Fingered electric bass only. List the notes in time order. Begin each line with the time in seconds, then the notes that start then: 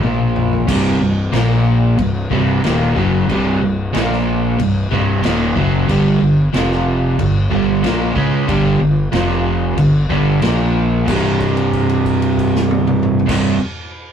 0.03 A#1
0.68 C1
1.01 C1
1.34 A#1
1.98 C1
2.32 C1
2.65 D#1
2.97 F#1
3.29 C1
3.62 C1
3.94 A#1
4.60 C1
4.92 C1
5.24 D#1
5.57 F#1
5.89 G1
6.21 G1
6.53 F1
7.19 G1
7.52 G1
7.84 A#1
8.16 C#2
8.49 G1
8.80 G1
9.12 F1
9.78 G1
10.10 G1
10.42 A#1
11.08 C1
13.29 C1